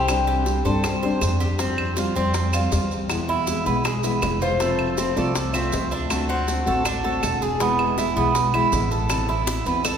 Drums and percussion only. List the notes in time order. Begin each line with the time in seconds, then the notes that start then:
0.08 high bongo, claves, maracas
0.28 high bongo
0.46 high bongo, maracas
0.65 high bongo, maracas
0.84 high bongo, claves, maracas
1.03 high bongo
1.21 high bongo, low bongo, claves, maracas
1.40 maracas
1.59 high bongo, maracas
1.78 high bongo, claves
1.97 high bongo, maracas
2.15 high bongo, maracas
2.34 high bongo, maracas
2.53 high bongo, claves, maracas
2.72 high bongo, low bongo, maracas
2.91 maracas
3.10 high bongo, claves, maracas
3.28 high bongo
3.47 high bongo, maracas
3.66 high bongo, maracas
3.85 high bongo, claves, maracas
4.03 high bongo, maracas
4.22 high bongo, low bongo, claves, maracas
4.41 maracas
4.60 high bongo, maracas
4.79 high bongo, claves
4.98 high bongo, maracas
5.17 high bongo, maracas
5.35 high bongo, maracas
5.54 high bongo, claves, maracas
5.72 high bongo, low bongo, maracas
5.92 maracas
6.10 high bongo, claves, maracas
6.30 high bongo
6.48 high bongo, maracas
6.67 high bongo, maracas
6.85 high bongo, claves, maracas
7.05 high bongo
7.23 high bongo, low bongo, claves, maracas
7.42 maracas
7.60 high bongo, maracas
7.79 high bongo, claves
7.98 high bongo, maracas
8.16 high bongo, maracas
8.35 high bongo, maracas
8.54 high bongo, claves
8.72 high bongo, low bongo, maracas
8.91 maracas
9.10 high bongo, claves, maracas
9.29 high bongo
9.47 high bongo, maracas
9.66 maracas
9.85 low bongo, claves, maracas